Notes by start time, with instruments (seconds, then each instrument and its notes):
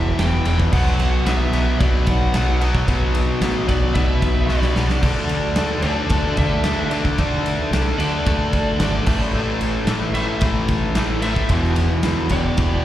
Already playing: fingered electric bass E1, overdriven electric guitar E2 B2 E3, lead electric guitar E5
0.19 fingered electric bass E1, overdriven electric guitar E2 B2 E3, lead electric guitar G5, snare, ride
0.45 fingered electric bass E1, overdriven electric guitar E2 B2 E3, ride
0.60 kick
0.73 fingered electric bass B1, overdriven electric guitar B2 F#3 B3, lead electric guitar F#5, kick, crash
0.87 snare
0.99 fingered electric bass B1, ride
1.26 fingered electric bass B1, overdriven electric guitar B2 F#3 B3, lead electric guitar E5, snare, ride
1.53 fingered electric bass B1, overdriven electric guitar B2 F#3 B3, snare, ride
1.79 fingered electric bass B1, overdriven electric guitar B2 F#3 B3, lead electric guitar D5, kick, ride
2.07 fingered electric bass B1, lead electric guitar F#5, kick, ride
2.33 fingered electric bass B1, overdriven electric guitar B2 F#3 B3, snare, ride
2.61 overdriven electric guitar B2 F#3 B3, ride
2.75 kick
2.88 fingered electric bass B1, overdriven electric guitar B2 F#3 B3, kick, ride
3.15 ride
3.41 fingered electric bass A1, overdriven electric guitar B2 F#3 B3, snare, ride
3.67 fingered electric bass B1, overdriven electric guitar B2 F#3 B3, lead electric guitar D5, kick, ride
3.94 fingered electric bass B1, overdriven electric guitar B2 F#3 B3, lead electric guitar B4 E5, kick, ride
4.22 fingered electric bass B1, kick, ride
4.47 fingered electric bass B1, overdriven electric guitar B2 F#3 B3, lead electric guitar B4 D5, snare
4.62 snare
4.76 fingered electric bass B1, overdriven electric guitar B2 F#3 B3, snare
4.89 snare
5.02 fingered electric bass D2, overdriven electric guitar D3 A3 D4, kick, crash
5.29 fingered electric bass D2, ride
5.56 fingered electric bass D2, overdriven electric guitar D3 A3 D4, snare, ride
5.82 fingered electric bass D2, overdriven electric guitar D3 A3 D4, lead electric guitar A4 D5, ride
6.10 fingered electric bass D2, overdriven electric guitar D3 A3 D4, kick, ride
6.37 fingered electric bass D2, lead electric guitar A4 E5, kick, ride
6.63 fingered electric bass D2, overdriven electric guitar D3 A3 D4, snare, ride
6.91 overdriven electric guitar D3 A3 D4, ride
7.05 kick
7.18 fingered electric bass D2, overdriven electric guitar D3 A3 D4, kick, ride
7.46 ride
7.71 fingered electric bass C2, overdriven electric guitar D3 A3 D4, snare, ride
7.98 fingered electric bass D2, overdriven electric guitar D3 A3 D4, lead electric guitar A4 D5, ride
8.26 fingered electric bass D2, overdriven electric guitar D3 A3 D4, kick, ride
8.53 fingered electric bass D2, kick, ride
8.79 fingered electric bass G#1, overdriven electric guitar D3 A3 D4, lead electric guitar A4 D5, snare, ride
9.06 fingered electric bass A1, overdriven electric guitar A2 E3 A3, kick, crash
9.33 fingered electric bass A1, overdriven electric guitar A2 E3 A3
9.61 fingered electric bass A1, ride
9.87 fingered electric bass A1, overdriven electric guitar A2 E3 A3, snare, ride
10.14 fingered electric bass A1, overdriven electric guitar A2 E3 A3, lead electric guitar C5 E5, ride
10.41 fingered electric bass A1, overdriven electric guitar A2 E3 A3, kick, ride
10.68 fingered electric bass A1, kick, ride
10.95 fingered electric bass A1, overdriven electric guitar A2 E3 A3, snare, ride
11.22 overdriven electric guitar A2 E3 A3, lead electric guitar C5 E5, ride
11.36 kick
11.49 fingered electric bass E1, overdriven electric guitar E2 B2 E3, kick, ride
11.64 snare
11.76 ride
12.03 fingered electric bass D2, overdriven electric guitar E2 B2 E3, snare, ride
12.29 fingered electric bass E1, overdriven electric guitar E2 B2 E3, lead electric guitar D5, kick, snare, ride
12.34 lead electric guitar G4
12.57 fingered electric bass E1, overdriven electric guitar E2 B2 E3, kick, ride